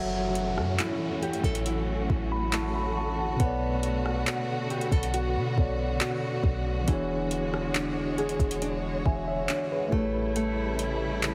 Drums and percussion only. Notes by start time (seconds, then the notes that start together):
0.35 closed hi-hat
0.58 cross-stick
0.79 clap, closed hi-hat
1.23 closed hi-hat
1.33 closed hi-hat
1.44 kick, closed hi-hat
1.55 closed hi-hat
1.66 closed hi-hat
2.10 kick
2.53 clap, closed hi-hat
3.40 kick, closed hi-hat
3.83 closed hi-hat
4.06 cross-stick
4.27 clap, closed hi-hat
4.70 closed hi-hat
4.81 closed hi-hat
4.92 kick, closed hi-hat
5.03 closed hi-hat
5.14 closed hi-hat
5.58 kick
6.01 clap, closed hi-hat
6.43 kick
6.88 kick, closed hi-hat
7.31 closed hi-hat
7.54 cross-stick
7.75 clap, closed hi-hat
8.18 closed hi-hat
8.29 closed hi-hat
8.39 kick, closed hi-hat
8.51 closed hi-hat
8.62 closed hi-hat
9.06 kick
9.49 clap, closed hi-hat
9.92 kick
10.36 closed hi-hat
10.79 closed hi-hat
11.23 clap, closed hi-hat